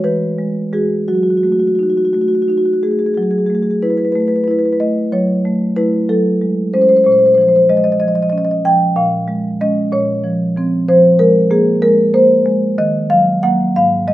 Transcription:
0.04 E3 B4
0.38 G#3
0.73 G#3 F#4 G#4
1.08 F#3 F#4
1.15 F#4
1.23 F#4
1.30 F#4
1.37 F#4
1.43 A3 F#4
1.52 F#4
1.60 F#4
1.67 F#4
1.75 D#4 F#4
1.83 F#4
1.90 F#4
1.97 F#4
2.05 F#4
2.13 A3 F#4
2.21 F#4
2.28 F#4
2.35 F#4
2.42 F#4
2.48 D#4 F#4
2.58 F#4
2.65 F#4
2.73 F#4
2.83 A3 G#4
2.91 G#4
2.99 G#4
3.06 G#4
3.14 F#3 G#4
3.22 G#4
3.31 G#4
3.38 G#4
3.46 A3 G#4
3.55 G#4
3.62 G#4
3.70 G#4
3.82 E4 B4
3.90 B4
3.97 B4
4.05 B4
4.12 A3 B4
4.20 B4
4.28 B4
4.36 B4
4.44 E4 B4
4.51 B4
4.59 B4
4.65 B4
4.73 B4
4.80 A3 D#5
5.12 F#3 C#5
5.45 A3
5.76 A3 E4 B4
6.09 F#3 A4
6.41 G#3
6.74 G#3 C#4 C5
6.81 C5
6.89 C5
6.97 C5
7.04 A#2 C5
7.12 C5
7.19 C5
7.26 C5
7.34 F3 C5
7.41 C5
7.48 C5
7.56 C5
7.69 G#3 D#5
7.77 D#5
7.84 D#5
7.92 D#5
8.00 F3 D#5
8.08 D#5
8.15 D#5
8.22 D#5
8.29 C#4 D#5
8.38 D#5
8.45 D#5
8.51 D#5
8.65 F3 G5
8.96 A#2 F5
9.28 G#3
9.61 G#3 C#4 D#5
9.92 A#2 C#5
10.24 F3
10.56 F3 C4
10.88 F3 C5
11.19 G#3 A#4
11.51 A#3 G#4
11.82 G#3 A#4
12.14 A#3 C5
12.46 G#3
12.78 D#3 D#5
13.10 F#3 F5
13.43 F#3 A#3 F#5
13.76 G#2 F5
14.08 G#3 D#5

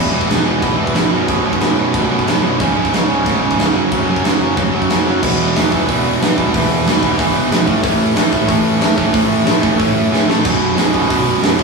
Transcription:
Already playing: E1 E2 B2 E3
0.12 E1 E2 B2 E3
0.21 kick
0.28 E1 E2 B2 E3, snare, crash
0.45 E1 E2 B2 E3
0.62 E1 E2 B2 E3, kick, crash
0.78 E1 E2 B2 E3
0.87 kick
0.94 C#1 E2 B2 E3, snare, crash
1.11 B0 B1 F#2 B2
1.28 B0 B1 F#2 B2, kick, crash
1.45 B0 B1 F#2 B2
1.53 kick
1.61 B0 B1 F#2 B2, snare, crash
1.76 B0 B1 F#2 B2
1.94 B0 B1 F#2 B2, kick, crash
2.10 B0 B1 F#2 B2
2.19 kick
2.26 B0 B1 F#2 B2, snare, crash
2.42 B0 B1 F#2 B2
2.59 C#1 C#2 G#2 C#3, kick, crash
2.76 C#1 C#2 G#2 C#3
2.85 kick
2.92 C#1 C#2 G#2 C#3, snare, crash
3.09 C#1 C#2 G#2 C#3
3.26 C#1 C#2 G#2 C#3, kick, crash
3.41 C#1 C#2 G#2 C#3
3.51 kick
3.58 C#1 C#2 G#2 C#3, snare, crash
3.74 F#1 F#2 C#3 F#3
3.91 F#1 F#2 C#3 F#3, kick, crash
4.07 F#1 F#2 C#3 F#3
4.16 kick
4.24 F#1 F#2 C#3 F#3, snare, crash
4.40 F#1 F#2 C#3 F#3
4.57 F#1 F#2 C#3 F#3, kick, crash
4.73 F#1 F#2 C#3 F#3
4.82 kick
4.89 F#1 F#2 C#3 F#3, snare, crash
5.06 F#1 F#2 C#3 F#3
5.22 E1 E2 B2 E3, kick, crash
5.39 E1
5.55 E1 E2 B2 E3, snare, open hi-hat
5.72 E1 E2 B2 E3, kick
5.88 E1 E2 B2 E3, kick, open hi-hat
6.21 B1 E2 B2 E3, snare, open hi-hat
6.37 E1 E2 B2 E3, kick
6.53 E1 E2 B2 E3, kick, open hi-hat
6.70 E1
6.85 E1 E2 B2 E3, snare, open hi-hat
7.02 E1 E2 B2 E3, kick
7.18 E2 B2 E3, kick, open hi-hat
7.35 C#2
7.50 A#1 E2 B2 E3, snare, open hi-hat
7.66 A1 A2 E3 A3, kick
7.82 A1 A2 E3 A3, kick, open hi-hat
8.01 A1
8.16 A1 A2 E3 A3, snare, open hi-hat
8.31 A1 A2 E3 A3, kick
8.48 A1 A2 E3 A3, kick, open hi-hat
8.80 E2 A2 E3 A3, snare, open hi-hat
8.96 A1 A2 E3 A3, kick
9.12 A1 A2 E3 A3, kick, open hi-hat
9.31 A1
9.46 A1 A2 E3 A3, snare, open hi-hat
9.62 A1 A2 E3 A3, kick
9.78 A2 E3 A3, kick, open hi-hat
9.97 F#2
10.11 A1 A2 E3 A3, snare
10.27 A1 A2 E3 A3, snare
10.44 B0 B1 F#2 B2, kick, crash
10.61 B0
10.76 B0 B1 F#2 B2, snare, open hi-hat
10.92 B0 B1 F#2 B2, kick
11.09 B0 B1 F#2 B2, kick, open hi-hat
11.42 F#1 B1 F#2 B2, snare, open hi-hat
11.58 B0 B1 F#2 B2, kick

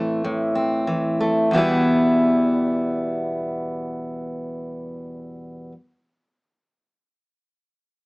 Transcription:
Already playing: A2 E3 A3 C4
0.24 A2
0.55 C4
0.87 E3
1.21 A3
1.51 E2 B2 E3
1.56 G3 B3 E4

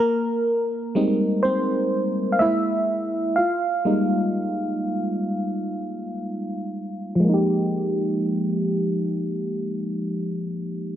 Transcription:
Already playing: A#4
0.00 A#3
0.95 G3 G#3 C4 D#4
1.43 C4 C5
2.32 F5
2.39 G#3 A#3 E4 E5
3.36 F4 F5
3.85 G3 G#3 A#3 D#4
7.15 F3
7.20 G#3
7.25 A#3
7.29 D#4
7.34 G4

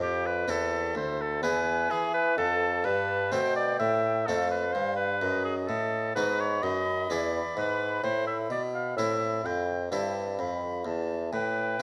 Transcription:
0.00 F2 G4
0.26 B4
0.47 E2 C4 E4 A4 E5
0.95 D2 C5
1.21 A4
1.42 E2 B3 E4 G#4 B4 G#5
1.90 E3 G#4
2.14 B4
2.37 F2 A4 A5
2.84 G2 B4
3.32 B2 A3 C4 A4 C5 G5
3.56 D5
3.79 A2 E5
4.26 F2 A3 C4 A4 F5
4.51 B4
4.73 G2 C5
4.96 B4
5.22 F#2 D#5
5.45 G#4
5.67 A2 A4
6.15 G#2 B3 D#4 F#4 B4 B5
6.41 C#5
6.62 F#2 D#5
7.09 E2 B3 E4 G#4 D5
7.55 G#2 B4
8.03 A2 C5
8.27 E5
8.49 B2 D5
8.75 F5
8.96 A2 C4 E4 A4 E5
9.43 F2 G5
9.91 G2 C4 E4 A4 A5
10.39 F2 B5
10.85 E2 A5
11.32 A2 B4 G5

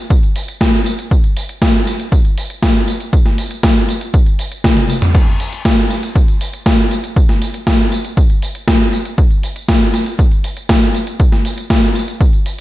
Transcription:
0.10 kick, closed hi-hat, tambourine
0.23 closed hi-hat, tambourine
0.36 open hi-hat, tambourine
0.48 closed hi-hat, tambourine
0.61 kick, snare, closed hi-hat, tambourine
0.74 closed hi-hat, tambourine
0.86 open hi-hat, tambourine
0.99 closed hi-hat, tambourine
1.11 kick, closed hi-hat, tambourine
1.24 closed hi-hat, tambourine
1.37 open hi-hat, tambourine
1.49 closed hi-hat, tambourine
1.62 kick, snare, closed hi-hat, tambourine
1.74 closed hi-hat, tambourine
1.87 snare, open hi-hat, tambourine
2.00 closed hi-hat, tambourine
2.12 kick, closed hi-hat, tambourine
2.25 closed hi-hat, tambourine
2.38 open hi-hat, tambourine
2.50 closed hi-hat, tambourine
2.63 kick, snare, closed hi-hat, tambourine
2.75 closed hi-hat, tambourine
2.88 open hi-hat, tambourine
3.00 closed hi-hat, tambourine
3.13 kick, closed hi-hat, tambourine
3.26 snare, closed hi-hat, tambourine
3.38 open hi-hat, tambourine
3.51 closed hi-hat, tambourine
3.63 kick, snare, closed hi-hat, tambourine
3.76 closed hi-hat, tambourine
3.89 open hi-hat, tambourine
4.01 closed hi-hat, tambourine
4.14 kick, closed hi-hat, tambourine
4.26 closed hi-hat, tambourine
4.39 open hi-hat, tambourine
4.52 closed hi-hat, tambourine
4.64 kick, snare, closed hi-hat, high tom, tambourine
4.77 closed hi-hat, high tom, tambourine
4.89 open hi-hat, tambourine
5.02 closed hi-hat, mid tom, tambourine
5.15 kick, closed hi-hat, crash, tambourine
5.27 closed hi-hat, tambourine
5.40 open hi-hat, tambourine
5.53 closed hi-hat, tambourine
5.65 kick, snare, closed hi-hat, tambourine
5.78 closed hi-hat, tambourine
5.91 snare, open hi-hat, tambourine
6.03 closed hi-hat, tambourine
6.16 kick, closed hi-hat, tambourine
6.28 closed hi-hat, tambourine
6.41 open hi-hat, tambourine
6.53 closed hi-hat, tambourine
6.66 kick, snare, closed hi-hat, tambourine
6.79 closed hi-hat, tambourine
6.91 open hi-hat, tambourine
7.04 closed hi-hat, tambourine
7.16 kick, closed hi-hat, tambourine
7.29 snare, closed hi-hat, tambourine
7.42 open hi-hat, tambourine
7.54 closed hi-hat, tambourine
7.67 kick, snare, closed hi-hat, tambourine
7.79 closed hi-hat, tambourine
7.92 open hi-hat, tambourine
8.05 closed hi-hat, tambourine
8.17 kick, closed hi-hat, tambourine
8.30 closed hi-hat, tambourine
8.42 open hi-hat, tambourine
8.55 closed hi-hat, tambourine
8.68 kick, snare, closed hi-hat, tambourine
8.80 closed hi-hat, tambourine
8.93 open hi-hat, tambourine
9.05 closed hi-hat, tambourine
9.18 kick, closed hi-hat, tambourine
9.31 closed hi-hat, tambourine
9.43 open hi-hat, tambourine
9.56 closed hi-hat, tambourine
9.68 kick, snare, closed hi-hat, tambourine
9.81 closed hi-hat, tambourine
9.94 snare, open hi-hat, tambourine
10.06 closed hi-hat, tambourine
10.19 kick, closed hi-hat, tambourine
10.31 closed hi-hat, tambourine
10.44 open hi-hat, tambourine
10.57 closed hi-hat, tambourine
10.69 kick, snare, closed hi-hat, tambourine
10.82 closed hi-hat, tambourine
10.94 open hi-hat, tambourine
11.07 closed hi-hat, tambourine
11.20 kick, closed hi-hat, tambourine
11.32 snare, closed hi-hat, tambourine
11.45 open hi-hat, tambourine
11.58 closed hi-hat, tambourine
11.70 kick, snare, closed hi-hat, tambourine
11.83 closed hi-hat, tambourine
11.95 open hi-hat, tambourine
12.08 closed hi-hat, tambourine
12.21 kick, closed hi-hat, tambourine
12.33 closed hi-hat, tambourine
12.46 open hi-hat, tambourine

